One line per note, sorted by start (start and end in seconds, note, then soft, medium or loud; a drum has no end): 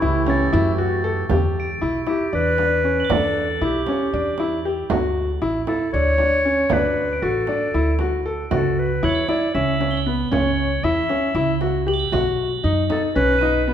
0.00 0.47 C#2 medium
0.00 1.28 E3 medium
0.00 1.26 A3 medium
0.00 0.75 E4 medium
0.00 0.20 E4 medium
0.00 1.26 G4 medium
0.27 0.45 C#4 medium
0.27 1.17 A6 medium
0.27 frame drum soft
0.53 1.21 F#2 loud
0.53 0.71 E4 medium
0.78 0.96 F#4 medium
1.04 1.22 A4 medium
1.29 1.76 E2 medium
1.29 1.66 G4 medium
1.29 frame drum medium
1.60 2.47 D7 soft
1.81 2.05 B1 medium
1.81 1.99 E4 medium
2.07 2.25 E4 medium
2.07 2.32 G4 medium
2.07 frame drum soft
2.33 3.01 E2 medium
2.33 2.51 D4 medium
2.33 3.13 B4 loud
2.58 2.76 D4 medium
2.58 frame drum soft
2.84 3.02 C#4 medium
3.00 3.87 F#7 medium
3.05 3.90 A7 soft
3.10 3.56 E2 medium
3.10 3.46 D4 medium
3.10 3.66 A4 medium
3.10 frame drum medium
3.61 3.84 B1 medium
3.61 3.79 E4 medium
3.61 4.66 G4 medium
3.87 4.06 C#4 medium
3.87 frame drum soft
4.13 4.82 E2 medium
4.13 4.31 D4 medium
4.38 4.57 E4 medium
4.38 frame drum soft
4.65 4.83 G4 medium
4.90 5.36 D2 medium
4.90 5.26 F#4 medium
4.90 frame drum medium
5.41 5.64 A1 medium
5.41 5.60 E4 medium
5.67 5.86 E4 medium
5.67 5.92 A4 medium
5.67 frame drum soft
5.93 6.62 D2 medium
5.93 6.12 D4 medium
5.93 6.74 C#5 medium
6.18 6.37 D4 medium
6.18 frame drum soft
6.45 6.63 C#4 medium
6.70 7.16 D2 medium
6.70 7.07 D4 medium
6.70 7.24 B4 medium
6.70 frame drum medium
7.13 8.01 D7 soft
7.22 7.45 A1 medium
7.22 7.40 F#4 medium
7.22 8.26 A4 medium
7.22 frame drum soft
7.47 7.66 D4 medium
7.47 frame drum soft
7.73 8.43 D2 medium
7.73 7.92 E4 medium
7.73 frame drum soft
7.99 8.18 F#4 medium
7.99 frame drum soft
8.25 8.44 A4 medium
8.25 frame drum soft
8.51 8.97 C#2 medium
8.51 8.87 F#4 medium
8.51 8.81 A4 medium
8.51 frame drum medium
8.79 9.06 B4 medium
9.03 9.26 E2 medium
9.03 9.21 E4 medium
9.03 9.28 C#5 medium
9.03 9.92 F#7 medium
9.09 9.95 A7 soft
9.15 9.96 B7 soft
9.29 9.47 E4 medium
9.29 9.53 D5 medium
9.29 frame drum soft
9.54 10.23 C#2 medium
9.54 9.73 C#4 medium
9.54 10.02 E5 medium
9.80 9.98 C#4 medium
9.80 frame drum soft
9.91 10.80 G7 medium
9.97 10.83 B7 soft
10.06 10.24 B3 medium
10.31 10.78 C#2 medium
10.31 10.68 C#4 medium
10.31 10.86 C#5 medium
10.31 frame drum medium
10.83 11.06 E2 medium
10.83 11.02 E4 medium
10.83 11.61 E5 medium
11.09 11.27 C#4 medium
11.09 frame drum soft
11.35 12.03 C#2 medium
11.35 11.53 E4 medium
11.61 11.79 F#4 medium
11.61 frame drum soft
11.87 12.05 G4 medium
11.87 12.35 F#7 medium
11.94 12.38 A7 medium
11.99 12.41 B7 soft
12.12 12.58 B1 medium
12.12 12.48 F#4 medium
12.12 frame drum medium
12.64 12.87 F#2 medium
12.64 12.82 D#4 medium
12.89 13.08 D#4 medium
12.89 13.03 A4 medium
12.89 frame drum soft
13.15 13.74 B1 medium
13.15 13.33 C#4 medium
13.15 13.64 B4 medium
13.34 13.74 B6 medium
13.39 13.60 D#4 medium
13.39 13.74 D#7 soft
13.39 frame drum soft
13.68 13.74 B3 medium